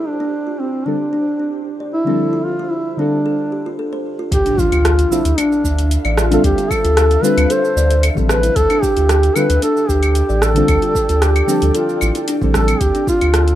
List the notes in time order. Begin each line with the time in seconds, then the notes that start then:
Already playing: D3 F3 G3 C4 D4 E4 G4 C5
0.07 D4
0.20 D4
0.47 F4
0.60 C4
0.86 D3 G3 C4 D4 F4 A4
1.13 D4
1.40 D4
1.80 D5
1.93 E4
2.05 D3 F3 G3 C4 D4 A4
2.33 F4
2.45 F4
2.59 F4
2.71 E4
2.93 E4
2.97 D3 G3 C4 D4 F4 A4
3.26 A4
3.52 G4
3.66 F4
3.79 A4
3.93 C5
4.19 F4
4.32 D2 G4, kick, closed hi-hat, impact, shaker
4.39 A4
4.46 D4, closed hi-hat, shaker
4.58 F4 E5, kick, shaker
4.72 D2 F4, closed hi-hat, claves, shaker
4.78 F5
4.85 cross-stick, closed hi-hat, shaker
4.99 closed hi-hat, shaker
5.11 D3 G3 C4 D4 E4 F4 A4, shaker
5.25 D2, closed hi-hat, shaker
5.38 D4, closed hi-hat, claves, shaker
5.52 shaker
5.64 D2 D4, kick, shaker
5.79 closed hi-hat, shaker
5.91 closed hi-hat, shaker
6.05 A1 D5, claves, shaker
6.17 F4, cross-stick, shaker
6.30 D3 G3 C4 D4 F4 A4, closed hi-hat, shaker
6.44 D2 G4, kick, closed hi-hat, shaker
6.58 F4, closed hi-hat, shaker
6.70 A4, kick, claves, shaker
6.84 D2 F4, closed hi-hat, shaker
6.97 cross-stick, closed hi-hat, shaker
7.11 closed hi-hat, shaker
7.21 D3 G3 C4 D4 F4 B4, shaker
7.25 A4
7.37 D2, closed hi-hat, claves, shaker
7.50 A4 C5, closed hi-hat, shaker
7.65 shaker
7.76 D2 D5, shaker
7.91 closed hi-hat, shaker
8.03 closed hi-hat, claves, shaker
8.15 A1 D3 F3 G3 C4 A4, kick, shaker
8.19 A4
8.29 B4, cross-stick, shaker
8.43 E4, closed hi-hat, shaker
8.56 D2 A4, kick, closed hi-hat, shaker
8.70 D4, closed hi-hat, claves, shaker
8.76 G5
8.83 G4, kick, shaker
8.97 D2 F4, closed hi-hat, shaker
9.09 cross-stick, closed hi-hat, shaker
9.23 closed hi-hat, shaker
9.36 D3 G3 C4 D4 F4 A4 B4, claves, shaker
9.50 D2, closed hi-hat, shaker
9.55 D5
9.62 D4 A4, closed hi-hat, shaker
9.77 shaker
9.89 D2 D4 G4, kick, shaker
10.03 closed hi-hat, claves, shaker
10.15 closed hi-hat, shaker
10.29 A1 D5, shaker
10.42 A4, cross-stick, shaker
10.54 D3 G3 C4 D4 F4, closed hi-hat, shaker
10.58 A4
10.68 D2, kick, closed hi-hat, claves, shaker
10.82 F4, closed hi-hat, shaker
10.95 kick, shaker
11.09 D2 F4, closed hi-hat, shaker
11.22 G4, cross-stick, closed hi-hat, shaker
11.36 closed hi-hat, claves, shaker
11.46 D3 F3 G3 C4 D4, shaker
11.51 A4
11.62 D2, closed hi-hat, shaker
11.75 F4 A4, closed hi-hat, shaker
11.89 shaker
12.01 A1 E4, claves, shaker
12.15 E4, closed hi-hat, shaker
12.28 D4, closed hi-hat, shaker
12.41 A1 D3 F3 G3 C4 A4, kick, shaker
12.54 A4, kick, cross-stick, shaker
12.68 C4, closed hi-hat, claves, shaker
12.81 D2 D4 G4, kick, closed hi-hat, shaker
12.95 D4, closed hi-hat, shaker
13.07 F4, kick, shaker
13.18 D2 F4 G4, closed hi-hat, claves, shaker
13.34 cross-stick, closed hi-hat, shaker
13.48 closed hi-hat, shaker